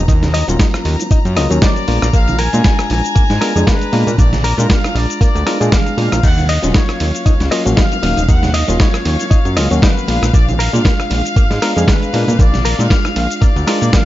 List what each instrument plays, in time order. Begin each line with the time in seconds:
Already playing: string section A#5
0.08 analog synth bass D#2, clean electric guitar D#4, kick, closed hi-hat, tambourine, high bongo, cabasa
0.21 snare, closed hi-hat, tambourine, high conga, low conga, cabasa
0.33 clean electric guitar D#5, open hi-hat, tambourine, high bongo
0.47 analog synth bass D#1, reed electric piano F#3 A#3 C#4 F4, clean electric guitar C#4, closed hi-hat, tambourine, cabasa
0.59 clean electric guitar D#4, kick, snare, closed hi-hat, tambourine, cabasa
0.74 cross-stick, closed hi-hat, tambourine, high bongo, cabasa
0.84 analog synth bass D#2, open hi-hat, tambourine, high conga
0.99 closed hi-hat, tambourine, high bongo, cabasa
1.11 clean electric guitar D#4, kick, closed hi-hat, tambourine, cabasa
1.25 analog synth bass F#2, closed hi-hat, tambourine, cabasa
1.36 analog synth bass C#2, reed electric piano F#3 A#3 C#4 F4, clean electric guitar D#5, cross-stick, open hi-hat, tambourine, high bongo
1.50 analog synth bass D#2, reed electric piano F#3 A#3 C#4 F#4, closed hi-hat, tambourine, cabasa
1.62 clean electric guitar D#4, trumpet section D5, kick, snare, closed hi-hat, tambourine, high bongo, high conga, cabasa
1.76 closed hi-hat, tambourine, cabasa
1.87 analog synth bass A#1, reed electric piano G#3 B3 D4 F4, clean electric guitar A#3, open hi-hat, tambourine
2.02 analog synth bass A#1, clean electric guitar A#3, cross-stick, closed hi-hat, tambourine, high bongo, cabasa
2.13 analog synth bass A#1, clean electric guitar A#3, trumpet section F5, kick, closed hi-hat, tambourine, cabasa
2.28 closed hi-hat, tambourine, high bongo, high conga, low conga, cabasa
2.39 clean electric guitar A#4, trumpet section G#5, open hi-hat, tambourine
2.53 analog synth bass A#2, reed electric piano G#3 D4 F4, clean electric guitar G#3, closed hi-hat, tambourine, low conga, cabasa
2.64 clean electric guitar A#3, kick, snare, closed hi-hat, tambourine, high bongo, cabasa
2.79 cross-stick, closed hi-hat, tambourine, cabasa
2.90 analog synth bass A#1, trumpet section G#5, open hi-hat, tambourine, high bongo, high conga
3.04 closed hi-hat, tambourine, cabasa
3.15 analog synth bass G#2, clean electric guitar A#3, kick, closed hi-hat, tambourine, cabasa
3.30 analog synth bass G#2, snare, closed hi-hat, tambourine, high bongo, cabasa
3.41 reed electric piano G#3 B3 D4 F4, clean electric guitar A#4, cross-stick, open hi-hat, tambourine
3.56 analog synth bass F2, reed electric piano G#3 D4 G#4, closed hi-hat, tambourine, high bongo, cabasa
3.67 clean electric guitar A#3, trumpet section B4, kick, snare, closed hi-hat, tambourine, high conga, cabasa
3.81 closed hi-hat, tambourine, cabasa
3.92 analog synth bass A#2, reed electric piano G#3 B3 D4 F4, clean electric guitar A#3, open hi-hat, tambourine, high bongo
4.07 analog synth bass A#2, clean electric guitar A#3, closed hi-hat, tambourine, low conga, cabasa
4.18 analog synth bass A#1, clean electric guitar A#3, trumpet section D5, kick, closed hi-hat, tambourine, high bongo, cabasa
4.32 snare, closed hi-hat, tambourine, high conga, low conga, cabasa
4.44 clean electric guitar A#4, open hi-hat, tambourine
4.58 analog synth bass A#2, reed electric piano G#3 D4 F4, clean electric guitar G#3, trumpet section A#4, closed hi-hat, tambourine, high bongo, low conga, cabasa
4.69 clean electric guitar A#3, trumpet section F5, kick, snare, closed hi-hat, tambourine, cabasa
4.84 cross-stick, closed hi-hat, tambourine, high bongo, cabasa
4.95 analog synth bass A#1, trumpet section D5, open hi-hat, tambourine
5.10 closed hi-hat, cabasa
5.21 clean electric guitar A#3, trumpet section D5, kick, closed hi-hat, tambourine, high bongo, cabasa
5.35 analog synth bass D2, closed hi-hat, tambourine, cabasa
5.46 reed electric piano G#3 B3 D4 F4, clean electric guitar A#4, cross-stick, open hi-hat, tambourine, high bongo
5.60 analog synth bass A#2, reed electric piano G#3 D4 G#4, closed hi-hat, tambourine, cabasa
5.72 clean electric guitar A#3, trumpet section F5, kick, snare, closed hi-hat, tambourine, high conga, cabasa
5.86 closed hi-hat, tambourine, high bongo, cabasa
5.97 analog synth bass A#2, reed electric piano G#3 B3 D4 F4, clean electric guitar A#3, open hi-hat, tambourine
6.12 analog synth bass A#1, clean electric guitar A#3, cross-stick, closed hi-hat, tambourine, high bongo, cabasa
6.23 analog synth bass D#2, clean electric guitar D#4, string section F5, trumpet section F#5, kick, closed hi-hat, crash, tambourine, cabasa
6.37 closed hi-hat, tambourine, high bongo, high conga, low conga, cabasa
6.49 clean electric guitar D#5, trumpet section D#5, open hi-hat, ride, tambourine
6.62 analog synth bass D#1, reed electric piano F#3 A#3 C#4 F4, clean electric guitar C#4, closed hi-hat, tambourine, high bongo, low conga, cabasa
6.74 clean electric guitar D#4, trumpet section C#5, kick, snare, closed hi-hat, tambourine, cabasa
6.89 cross-stick, closed hi-hat, cabasa
7.00 analog synth bass D#2, trumpet section C#5, open hi-hat, ride, tambourine, high bongo
7.14 closed hi-hat, tambourine, cabasa
7.26 analog synth bass C#2, clean electric guitar D#4, kick, closed hi-hat, tambourine, high bongo, cabasa
7.40 analog synth bass C#2, snare, closed hi-hat, cabasa
7.51 reed electric piano F#3 A#3 C#4 F4, clean electric guitar D#5, cross-stick, open hi-hat, ride, tambourine
7.65 analog synth bass A#1, reed electric piano F#3 A#3 C#4 F#4, closed hi-hat, tambourine, high bongo, cabasa
7.77 clean electric guitar D#4, trumpet section F5, kick, snare, closed hi-hat, tambourine, high conga, cabasa
7.91 closed hi-hat, tambourine, high bongo, cabasa
8.03 analog synth bass D#1, reed electric piano F#3 A#3 C#4 D#4, clean electric guitar D#4, open hi-hat, ride, tambourine
8.16 analog synth bass D#1, clean electric guitar D#4, closed hi-hat, tambourine, low conga, cabasa
8.28 analog synth bass D#2, clean electric guitar D#4, trumpet section F#5, kick, closed hi-hat, tambourine, high bongo, cabasa
8.43 snare, closed hi-hat, tambourine, high conga, low conga, cabasa
8.54 trumpet section D#5, clean electric guitar D#5, open hi-hat, ride, tambourine, high bongo
8.68 analog synth bass D#1, reed electric piano F#3 A#3 C#4 F4, clean electric guitar C#4, closed hi-hat, tambourine, cabasa
8.79 clean electric guitar D#4, trumpet section C#5, kick, snare, closed hi-hat, tambourine, cabasa
8.94 cross-stick, closed hi-hat, tambourine, high bongo, cabasa
9.05 analog synth bass D#2, trumpet section C#5, open hi-hat, ride, tambourine, high conga
9.20 closed hi-hat, tambourine, high bongo, cabasa
9.31 clean electric guitar D#4, kick, closed hi-hat, tambourine, cabasa
9.45 analog synth bass F#2, closed hi-hat, tambourine, cabasa
9.57 analog synth bass C#2, reed electric piano F#3 A#3 C#4 F4, clean electric guitar D#5, cross-stick, open hi-hat, ride, tambourine, high bongo
9.71 analog synth bass D#2, reed electric piano F#3 A#3 C#4 F#4, closed hi-hat, tambourine, cabasa
9.82 clean electric guitar D#4, trumpet section B4, kick, snare, closed hi-hat, tambourine, high bongo, high conga, cabasa
9.97 closed hi-hat, tambourine, cabasa
10.07 analog synth bass A#1, reed electric piano G#3 B3 D4 F4, clean electric guitar A#3, open hi-hat, ride, tambourine
10.22 analog synth bass A#1, clean electric guitar A#3, cross-stick, closed hi-hat, tambourine, high bongo, cabasa
10.33 analog synth bass A#1, clean electric guitar A#3, trumpet section D5, kick, closed hi-hat, tambourine, cabasa
10.48 closed hi-hat, tambourine, high bongo, high conga, low conga, cabasa
10.59 clean electric guitar A#4, trumpet section F5, open hi-hat, ride, tambourine
10.73 analog synth bass A#2, reed electric piano G#3 D4 F4, clean electric guitar G#3, closed hi-hat, tambourine, low conga, cabasa
10.85 clean electric guitar A#3, kick, snare, closed hi-hat, tambourine, high bongo, cabasa
11.00 cross-stick, closed hi-hat, tambourine, cabasa
11.10 analog synth bass A#1, trumpet section F5, open hi-hat, ride, tambourine, high bongo, high conga
11.25 closed hi-hat, tambourine, cabasa
11.36 analog synth bass G#2, clean electric guitar A#3, kick, closed hi-hat, tambourine, cabasa
11.50 analog synth bass G#2, snare, closed hi-hat, tambourine, high bongo, cabasa
11.61 reed electric piano G#3 B3 D4 F4, clean electric guitar A#4, cross-stick, open hi-hat, ride, tambourine
11.75 analog synth bass F2, reed electric piano G#3 D4 G#4, closed hi-hat, tambourine, high bongo, cabasa
11.87 clean electric guitar A#3, trumpet section B4, kick, snare, closed hi-hat, tambourine, high conga, cabasa
12.01 closed hi-hat, tambourine, cabasa
12.13 analog synth bass A#2, reed electric piano G#3 B3 D4 F4, clean electric guitar A#3, open hi-hat, ride, tambourine, high bongo
12.27 analog synth bass A#2, clean electric guitar A#3, closed hi-hat, tambourine, low conga, cabasa
12.39 analog synth bass A#1, clean electric guitar A#3, trumpet section D5, kick, closed hi-hat, tambourine, high bongo, cabasa
12.53 snare, closed hi-hat, tambourine, high conga, low conga, cabasa
12.64 clean electric guitar A#4, open hi-hat, ride, tambourine
12.78 analog synth bass A#2, reed electric piano G#3 D4 F4, clean electric guitar G#3, trumpet section F5, closed hi-hat, tambourine, high bongo, cabasa
12.90 clean electric guitar A#3, kick, snare, closed hi-hat, tambourine, cabasa
13.04 cross-stick, closed hi-hat, tambourine, high bongo, cabasa
13.16 analog synth bass A#1, trumpet section F5, open hi-hat, ride, tambourine
13.30 closed hi-hat, tambourine, cabasa
13.41 clean electric guitar A#3, trumpet section D5, kick, closed hi-hat, tambourine, high bongo, cabasa
13.56 analog synth bass D2, closed hi-hat, tambourine, cabasa
13.66 reed electric piano G#3 D4 F4, clean electric guitar A#4, cross-stick, open hi-hat, ride, tambourine, high bongo
13.82 analog synth bass A#2, closed hi-hat, tambourine, cabasa
13.93 clean electric guitar A#3, trumpet section F5, kick, snare, closed hi-hat, tambourine, high conga, cabasa